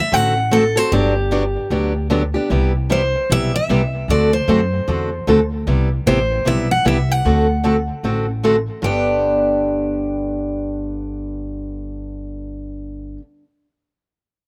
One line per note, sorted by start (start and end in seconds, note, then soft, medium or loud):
0.00 0.14 E5 medium
0.12 0.76 A1 medium
0.12 0.33 D3 medium
0.12 0.33 A3 medium
0.12 0.33 C4 medium
0.12 0.33 F#4 medium
0.12 0.34 A4 medium
0.12 0.54 F#5 loud
0.51 0.63 D3 medium
0.51 0.63 A3 medium
0.51 0.63 C4 medium
0.51 0.63 F#4 medium
0.51 0.63 A4 medium
0.51 0.77 A4 medium
0.76 0.92 C4 medium
0.76 0.91 F#4 soft
0.76 0.91 A4 medium
0.76 0.92 C5 medium
0.92 1.55 G1 medium
0.92 1.13 D3 medium
0.92 1.13 F#3 medium
0.92 1.13 B3 medium
0.92 1.13 D4 medium
0.92 2.07 G4 medium
0.92 1.13 G4 medium
1.31 1.42 D3 medium
1.31 1.43 F#3 medium
1.31 1.43 B3 medium
1.31 1.43 D4 medium
1.31 1.43 G4 medium
1.70 2.34 D2 medium
1.70 1.92 D3 medium
1.70 1.92 F#3 medium
1.70 1.92 B3 medium
1.70 1.92 D4 medium
1.70 1.92 G4 medium
2.10 2.21 D3 medium
2.10 2.21 F#3 medium
2.10 2.22 B3 medium
2.10 2.22 D4 medium
2.10 2.22 G4 medium
2.34 2.50 B3 soft
2.34 2.50 D4 medium
2.34 2.49 G4 medium
2.50 3.13 C2 medium
2.50 2.71 C3 medium
2.50 2.71 G3 medium
2.50 2.71 B3 medium
2.50 2.72 E4 medium
2.50 2.72 G4 medium
2.90 3.01 C3 medium
2.90 3.01 G3 medium
2.90 3.01 B3 medium
2.90 3.01 E4 medium
2.90 3.01 G4 medium
2.90 3.32 C5 medium
3.30 3.63 B1 medium
3.30 3.51 C3 medium
3.30 3.51 G3 medium
3.30 3.51 B3 medium
3.30 3.51 E4 medium
3.30 3.51 G4 medium
3.30 3.53 E5 loud
3.56 4.10 E5 medium
3.69 4.02 C2 medium
3.69 3.80 C3 medium
3.69 3.80 G3 medium
3.69 3.81 B3 medium
3.69 3.81 E4 medium
3.69 3.81 G4 medium
4.08 4.40 D2 medium
4.08 4.30 D3 medium
4.08 4.30 A3 medium
4.08 4.30 C4 medium
4.08 4.30 F#4 medium
4.08 4.30 A4 medium
4.08 4.32 D5 medium
4.33 5.48 C5 medium
4.48 4.82 F#2 medium
4.48 4.59 D3 medium
4.48 4.59 A3 medium
4.48 4.60 C4 medium
4.48 4.60 F#4 medium
4.48 4.60 A4 medium
4.88 5.21 E2 medium
4.88 5.09 D3 medium
4.88 5.08 A3 medium
4.88 5.09 C4 medium
4.88 5.09 F#4 medium
4.88 5.09 A4 medium
5.27 5.61 D2 medium
5.27 5.38 D3 medium
5.27 5.39 A3 medium
5.27 5.39 C4 medium
5.27 5.39 F#4 medium
5.27 5.39 A4 medium
5.67 5.98 C2 medium
5.67 5.88 C3 medium
5.67 5.88 G3 medium
5.67 5.88 B3 medium
5.67 5.88 E4 medium
5.67 5.88 G4 medium
6.06 6.40 A1 medium
6.06 6.18 C3 medium
6.06 6.18 G3 medium
6.06 6.18 B3 medium
6.06 6.18 E4 medium
6.06 6.18 G4 medium
6.06 6.47 C5 medium
6.45 6.80 B1 medium
6.45 6.66 C3 medium
6.45 6.67 G3 medium
6.45 6.67 B3 medium
6.45 6.67 E4 medium
6.45 6.67 G4 medium
6.45 6.71 E5 medium
6.71 6.87 F#5 medium
6.85 7.19 C2 medium
6.85 6.96 C3 medium
6.85 6.96 G3 medium
6.85 6.97 B3 medium
6.85 6.97 E4 medium
6.85 6.97 G4 medium
6.85 7.11 E5 medium
7.11 8.45 F#5 medium
7.25 7.88 D2 medium
7.25 7.46 D3 medium
7.25 7.46 A3 medium
7.25 7.46 C4 medium
7.25 7.46 F#4 medium
7.25 7.47 A4 medium
7.64 7.75 D3 medium
7.64 7.75 A3 medium
7.64 7.75 C4 medium
7.64 7.76 F#4 medium
7.64 7.76 A4 medium
8.03 8.67 A1 medium
8.03 8.25 D3 medium
8.03 8.25 A3 medium
8.03 8.25 C4 medium
8.03 8.25 F#4 medium
8.03 8.25 A4 medium
8.43 8.55 D3 medium
8.43 8.55 A3 medium
8.43 8.55 C4 medium
8.43 8.55 F#4 medium
8.43 8.55 A4 medium
8.82 13.16 G1 medium
8.82 13.19 G2 medium
8.82 13.20 D3 medium
8.82 13.21 B3 medium
8.82 13.22 D4 medium
8.82 13.23 G4 medium
8.82 13.17 G5 medium